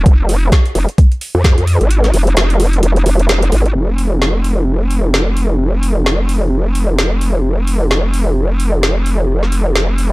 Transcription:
0.06 wobble bass F1, kick, closed hi-hat
0.29 open hi-hat
0.52 kick, snare, closed hi-hat
0.66 closed hi-hat
0.75 wobble bass F1, open hi-hat
0.89 closed hi-hat
0.98 kick, closed hi-hat
1.12 closed hi-hat
1.21 open hi-hat
1.35 wobble bass F2
1.44 kick, snare, closed hi-hat
1.58 wobble bass F2, closed hi-hat
1.67 open hi-hat
1.81 wobble bass G#1, closed hi-hat
1.91 closed hi-hat
2.04 snare, closed hi-hat
2.14 wobble bass F1, open hi-hat
2.27 closed hi-hat
2.37 wobble bass F1, snare, closed hi-hat
2.50 closed hi-hat
2.60 open hi-hat
2.73 closed hi-hat
2.83 wobble bass F1, closed hi-hat
2.96 closed hi-hat
3.06 wobble bass F1, open hi-hat
3.19 closed hi-hat
3.29 snare, closed hi-hat
3.42 closed hi-hat
3.52 wobble bass G#1, open hi-hat
3.66 closed hi-hat
3.75 wobble bass F1
3.98 open hi-hat
4.22 snare
4.44 open hi-hat
4.91 open hi-hat
5.14 snare
5.37 open hi-hat
5.83 open hi-hat
6.06 snare
6.29 open hi-hat
6.75 open hi-hat
6.99 snare
7.21 open hi-hat
7.67 open hi-hat
7.91 snare
8.14 open hi-hat
8.60 open hi-hat
8.83 snare
9.06 open hi-hat
9.43 snare
9.52 open hi-hat
9.76 snare
9.98 open hi-hat

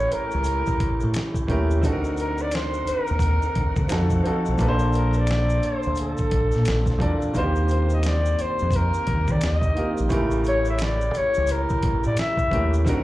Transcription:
Already playing: upright piano A2 A3 C#4 G4 A#4, tonewheel organ A3 C#4 G4, flugelhorn C#5
0.12 flugelhorn A#4, muted fingered electric bass stroke, closed hi-hat, maracas
0.31 fingered electric bass C#2, maracas
0.44 closed hi-hat, maracas
0.66 kick, maracas
0.80 fingered electric bass A1, kick, closed hi-hat
1.00 fingered electric bass A2, maracas
1.14 finger snap, snare, closed hi-hat, maracas
1.34 kick, maracas
1.47 fingered electric bass D#2, upright piano A2 A3 C#4 G4, kick, closed hi-hat
1.51 upright piano A#4
1.71 maracas
1.81 fingered electric bass D2, upright piano D3 C4 D#4 F#4, tonewheel organ D3 C4 D#4 A#4 F#5, kick, closed hi-hat, maracas
1.86 upright piano A4
1.92 upright piano A#4
2.04 maracas
2.17 flugelhorn A#4, closed hi-hat, maracas
2.38 flugelhorn D5, maracas
2.52 flugelhorn C5, finger snap, snare, closed hi-hat, maracas
2.74 maracas
2.87 flugelhorn A#4, muted fingered electric bass stroke, closed hi-hat, maracas
3.07 fingered electric bass D#2, maracas
3.19 kick, closed hi-hat, maracas
3.42 maracas
3.55 fingered electric bass D2, kick, closed hi-hat
3.76 fingered electric bass D3, kick, maracas
3.88 upright piano F3 C4 D#4 F#4, tonewheel organ F3 A4, finger snap, closed hi-hat, maracas
3.92 fingered electric bass F2, upright piano A4, snare
4.10 kick, maracas
4.23 upright piano F3 C4 D#4 F#4, closed hi-hat
4.27 upright piano A4
4.46 fingered electric bass B1, maracas
4.57 fingered electric bass A#1, upright piano A#2 A#3 D4 A4, tonewheel organ A#3 D4 A4, kick, closed hi-hat, maracas
4.62 upright piano B4
4.68 upright piano C5
4.79 maracas
4.93 closed hi-hat, maracas
4.97 flugelhorn A#4
5.13 maracas
5.18 flugelhorn D5
5.27 finger snap, snare, closed hi-hat, maracas
5.50 maracas
5.63 flugelhorn C5, muted fingered electric bass stroke, closed hi-hat, maracas
5.83 maracas
5.87 fingered electric bass D2
5.95 closed hi-hat, maracas
6.01 flugelhorn A4
6.18 kick, maracas
6.31 fingered electric bass A#1, kick, closed hi-hat
6.52 fingered electric bass A#2, snare, maracas
6.65 fingered electric bass A#1, finger snap, snare, closed hi-hat, maracas
6.86 kick, maracas
6.90 snare
6.98 fingered electric bass E2, upright piano A#2 A#3 D4 A4, kick, closed hi-hat
7.03 upright piano D5
7.22 maracas
7.33 fingered electric bass D#2, upright piano D#3 A#3 F4 F#4, tonewheel organ D#3 C4 G4, kick, closed hi-hat, maracas
7.38 upright piano C5
7.43 upright piano G4
7.56 maracas
7.68 flugelhorn C5, closed hi-hat, maracas
7.90 maracas
7.94 flugelhorn D#5
8.03 flugelhorn D5, finger snap, snare, closed hi-hat, maracas
8.26 maracas
8.39 flugelhorn C5, muted fingered electric bass stroke, closed hi-hat, maracas
8.59 fingered electric bass F2, maracas
8.71 kick, closed hi-hat, maracas
8.76 flugelhorn A#4
8.94 maracas
9.07 fingered electric bass D#2, kick, closed hi-hat
9.28 fingered electric bass D#3, kick, maracas
9.32 flugelhorn D5
9.41 fingered electric bass D#2, finger snap, snare, closed hi-hat, maracas
9.45 flugelhorn D#5
9.62 kick, maracas
9.74 upright piano D#3 A#3 F4 G4, closed hi-hat
9.79 upright piano A#4
9.98 fingered electric bass A#1, maracas
10.09 fingered electric bass A1, upright piano A2 C#3 A3 G4, tonewheel organ C#3 A3, kick, closed hi-hat, maracas
10.13 upright piano A#4
10.31 maracas
10.44 closed hi-hat, maracas
10.49 flugelhorn C#5
10.65 maracas
10.70 flugelhorn E5
10.79 finger snap, snare, closed hi-hat, maracas
10.83 flugelhorn D5
11.01 maracas
11.14 flugelhorn C#5, muted fingered electric bass stroke, closed hi-hat, maracas
11.34 fingered electric bass C#2, maracas
11.47 closed hi-hat, maracas
11.51 flugelhorn A#4
11.69 kick, maracas
11.83 fingered electric bass A1, kick, closed hi-hat
12.03 fingered electric bass A2, flugelhorn D5, maracas
12.17 flugelhorn E5, finger snap, snare, closed hi-hat, maracas
12.37 kick, maracas
12.50 fingered electric bass D#2, upright piano A2 A3 C#4 G4, kick, closed hi-hat
12.54 upright piano A#4
12.74 maracas
12.84 fingered electric bass D2, upright piano D3 C4 D#4 F#4, tonewheel organ D3 C4 D#4 A#4 F#5, kick, closed hi-hat, maracas
12.89 upright piano A#4

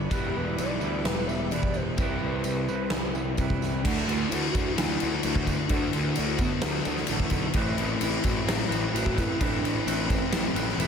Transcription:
Already playing: picked electric bass G1, overdriven electric guitar G3 B3 D4, clean electric guitar B3 B4, string machine B5
0.10 picked electric bass E1, clean electric guitar E3 G3 D4 E4 B4, overdriven electric guitar B3, string machine G4 D5 E5, soft synth lead G4, kick, tambourine, crash
0.35 picked electric bass E1, soft synth lead B4
0.58 picked electric bass B1, soft synth lead D5, tambourine, crash
0.79 picked electric bass D2, clean electric guitar E3 G3 D4 E4 B4, soft synth lead D5, tambourine
1.05 picked electric bass E1, soft synth lead B4, snare, crash
1.27 soft synth lead E5, tambourine
1.51 picked electric bass E1, clean electric guitar E3 G3 D4 E4 B4, soft synth lead D5, tambourine, crash
1.63 kick
1.74 soft synth lead C5, tambourine
1.98 picked electric bass C2, clean electric guitar C3 E3 G3 C4 E4 B4, string machine C4, soft synth lead B4, kick, tambourine, crash
2.23 picked electric bass C2
2.44 picked electric bass C2, tambourine, crash
2.68 picked electric bass C2, clean electric guitar C3 E3 G3 C4 E4 B4, tambourine
2.90 picked electric bass C2, snare, tambourine, crash
3.15 tambourine
3.37 picked electric bass C2, clean electric guitar C3 E3 G3 C4 E4 B4, kick, tambourine, crash
3.50 kick
3.62 snare, tambourine
3.83 picked electric bass D2, clean electric guitar D3 E3 A3 D4 F#4, soft synth lead A3, kick, crash, tambourine
4.08 picked electric bass D2, clean electric guitar A3 D4 F#4, tambourine, crash
4.28 picked electric bass D2, overdriven electric guitar D3, clean electric guitar E3, soft synth lead E4, tambourine, crash
4.33 clean electric guitar A3 D4 F#4
4.51 picked electric bass D2, overdriven electric guitar D4 F#4, soft synth lead F#4, kick, crash
4.56 overdriven electric guitar A3, tambourine
4.73 overdriven electric guitar D3, soft synth lead E4
4.78 picked electric bass D2, overdriven electric guitar A3 D4 F#4, snare, tambourine, crash
5.00 picked electric bass D2, clean electric guitar A3 D4 F#4, tambourine, crash
5.23 picked electric bass D2, clean electric guitar D3 E3 A3 D4 F#4, tambourine, crash
5.36 kick
5.46 clean electric guitar A3 D4 F#4, kick, tambourine, crash
5.67 picked electric bass D2, clean electric guitar D3 E3, soft synth lead D4, kick, tambourine, crash
5.72 clean electric guitar A3 D4 F#4
5.92 picked electric bass D2, clean electric guitar A3 D4 F#4, tambourine, crash
6.15 picked electric bass D2, overdriven electric guitar D3, clean electric guitar E3 A3 D4 F#4, tambourine, crash
6.38 soft synth lead B3, overdriven electric guitar D4 F#4, kick, tambourine, crash
6.43 overdriven electric guitar A3
6.61 picked electric bass D2, overdriven electric guitar D3 A3 D4 F#4, soft synth lead A3, snare, tambourine, crash
6.85 picked electric bass D2, clean electric guitar A3 D4 F#4, tambourine, crash
6.96 snare
7.07 picked electric bass A1, clean electric guitar D3 E3 A3, tambourine, crash
7.12 clean electric guitar D4 F#4
7.20 kick
7.30 picked electric bass B1, clean electric guitar D4 F#4, kick, tambourine, crash
7.34 clean electric guitar A3
7.54 picked electric bass A1, clean electric guitar A2 E3 A3 C4 E4 B4, soft synth lead A3, kick, tambourine, crash
7.78 picked electric bass A1, clean electric guitar A3 C4 E4 B4, tambourine, crash
7.99 picked electric bass A1, overdriven electric guitar E3, clean electric guitar A3 C4 E4 B4, soft synth lead E4, tambourine, crash
8.23 picked electric bass A1, overdriven electric guitar A3 C4 E4, soft synth lead F#4, kick, tambourine, crash
8.45 picked electric bass A1, overdriven electric guitar A2 E3 A3 C4 E4, soft synth lead E4, snare, crash
8.50 tambourine
8.69 picked electric bass A1, clean electric guitar A3 C4 E4 B4, tambourine, crash
8.92 picked electric bass A1, clean electric guitar A2 E3 A3 C4 E4 B4, soft synth lead F#4
8.96 tambourine, crash
9.06 kick
9.16 clean electric guitar A3 C4 E4 B4, soft synth lead E4, kick, tambourine, crash
9.39 picked electric bass A1, clean electric guitar A2 E3 A3 C4 E4 B4, soft synth lead D4, kick, tambourine, crash
9.62 picked electric bass A1, clean electric guitar A3 C4 E4 B4, tambourine, crash
9.85 picked electric bass A1, overdriven electric guitar E3, clean electric guitar A3 C4 E4 B4, tambourine, crash
10.08 overdriven electric guitar A3 C4 E4, soft synth lead C4, kick, tambourine, crash
10.31 picked electric bass A1, overdriven electric guitar A2 E3 A3 C4 E4, snare, tambourine, crash
10.55 picked electric bass A1, clean electric guitar A3 C4 E4 B4, tambourine, crash
10.68 snare
10.77 picked electric bass E1, clean electric guitar A2 E3 A3 C4 E4 B4, tambourine, crash

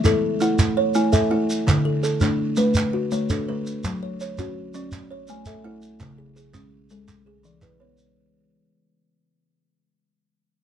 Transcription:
Already playing: kalimba E5
0.04 kalimba E4 A4, clap, shekere
0.41 kalimba A3 E4 F#5, shekere
0.59 clap, shekere
0.77 kalimba C#5
0.94 kalimba A3 E4 G#5, shekere
1.12 kalimba A4 E5, clap, shekere
1.31 kalimba A3 E4 F#5
1.50 shekere
1.67 kalimba D3, clap, shekere
1.85 kalimba A4
2.03 kalimba A4, clap, shekere
2.21 kalimba A3 D4, clap, shekere
2.56 kalimba D3 A3 B4, shekere
2.74 clap, shekere
2.93 kalimba F#4
3.12 kalimba D3 A3 C#5, shekere
3.30 kalimba D4 A4, clap, shekere
3.48 kalimba D3 A3 B4
3.66 shekere
3.84 kalimba F#3, clap, shekere
4.03 kalimba C#5
4.20 kalimba C#5, clap, shekere
4.38 kalimba C#4 F#4, clap, shekere
4.74 kalimba F#3 C#4 D5, shekere
4.92 clap, shekere
5.11 kalimba C#5
5.28 kalimba A3 G#5, shekere
5.46 kalimba A4 E5, clap, shekere
5.64 kalimba A3 E4 F#5
5.82 shekere
6.00 kalimba C#3, clap, shekere
6.18 kalimba G#4
6.36 kalimba G#4, shekere
6.53 kalimba G#3 C#4, clap, shekere
6.90 kalimba C#3 G#3 A4, shekere
7.08 clap, shekere
7.26 kalimba G#4
7.43 kalimba E3 D5, shekere
7.62 kalimba E4 B4, clap, shekere
7.80 kalimba E3 B3 C#5
7.98 shekere

